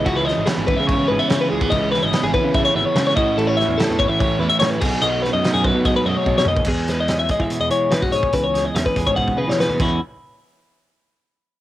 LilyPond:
<<
  \new Staff \with { instrumentName = "Clean electric guitar" } { \time 4/4 \key e \major \tempo 4 = 145 fis'16 b'16 dis''8 gis'8 b'16 e''16 cis''8 b'16 e''16 cis''16 b'16 gis'8 | dis''8 b'16 dis''8 gis'16 b'8 e''16 cis''16 e''16 cis''8 cis''16 dis''8 | a'16 cis''16 e''8 a'8 cis''16 e''16 cis''8 b'16 e''16 cis''16 b'16 gis'8 | dis''8 b'16 dis''8 gis'16 b'8 dis''16 b'16 dis''16 cis''8 cis''16 dis''8 |
gis'8 b'16 dis''8 e''16 dis''16 e''8 dis''16 cis''8 b'16 fis'16 cis''8 | b'16 cis''8 dis''16 e''16 b'8 cis''16 fis''8 b'16 cis''16 b'8 e'8 | r1 | }
  \new Staff \with { instrumentName = "Overdriven electric guitar" } { \time 4/4 \key e \major <cis gis cis' e'>4. <cis gis cis' e'>4. <cis gis cis' e'>4 | <cis gis cis' e'>4. <cis gis cis' e'>4. <cis gis cis' e'>8 <a, e a cis' e'>8~ | <a, e a cis' e'>4 <a, e a cis' e'>4. <a, e a cis' e'>4 <b, fis a dis'>8~ | <b, fis a dis'>4 <b, fis a dis'>4. <b, fis a dis'>4 r8 |
r1 | r1 | r1 | }
  \new Staff \with { instrumentName = "Clean electric guitar" } { \clef bass \time 4/4 \key e \major << { gis4 b4. gis16 b8. gis16 b16 | r4 b4. b4 <e cis' e' fis'>8~ | <e cis' e' fis'>8 cis'8 e'4 cis'4 cis'8 r8 | r4 dis'4 gis4 gis4~ |
gis8 gis8 cis'8 gis4 gis8 cis'8 gis'8 | r8 gis8 cis'8 gis4 gis8 b16 cis'16 <e gis cis' fis'>8 | r1 | } \\ { <cis e>8 e4. e4 e4 | cis8 e4. e4 e8 a,8 | e4. e4 e4 b,8 | fis4. fis4 fis4 b,8 |
e,2 b,2 | e,2 b,4. e,8 | r1 | } >> }
  \new Staff \with { instrumentName = "Picked electric bass" } { \clef bass \time 4/4 \key e \major cis,8. gis,,16 r16 gis,,8 cis8. gis,,16 r16 cis8 cis,8 | cis,8. gis,,16 r16 gis,,8 cis8. gis,,16 r16 cis8 a,,8 | a,,8. e,16 r16 e,8 a,8. e,16 r16 a,8 b,,8 | b,,8. fis,16 r16 fis,8 b,8. fis,16 r16 b,8 dis,8 |
e,4.~ e,16 e8 e,16 e8 e16 r16 gis,16 r16 | cis,4 e,16 r16 e,16 gis,8. cis16 e8 e,16 e,8 | r1 | }
  \new DrumStaff \with { instrumentName = "Drums" } \drummode { \time 4/4 <cymc bd>8 sn8 <cymc sn>8 bd8 <cymc bd>4 <cymc sn>8. bd16 | <cymc bd>8 sn8 <cymc sn>8 bd8 <cymc bd>4 <cymc sn>8 bd8 | cymc8 sn8 <cymc sn>8 bd8 <cymc bd>4 <cymc sn>8 <cymc bd>8 | cymc8 sn8 <cymc sn>8 bd8 <cymc bd>4 bd16 sn16 toml16 bd16 |
<cymc bd>8 <hh sn>8 <hh sn>8 <hh bd>16 bd16 hh8 hh8 <hh sn>16 <bd sn>16 hh16 bd16 | <hh bd>8 <hh sn>8 <hh sn>16 bd16 <hh bd>16 bd16 bd16 bd8 sn16 sn8 <cymc bd>8 | r4 r4 r4 r4 | }
>>